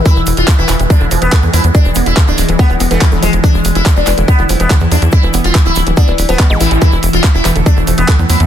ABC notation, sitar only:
X:1
M:4/4
L:1/16
Q:1/4=142
K:none
V:1 name="Sitar"
E z2 F z E z2 D z2 B, z2 E z | D z2 E z D z2 B, z2 A, z2 ^G, z | D z2 E z D z2 B, z2 B, z2 D z | E z2 F z E z2 D z2 B, z2 E z |
E z2 F z E z2 D z2 B, z2 E z |]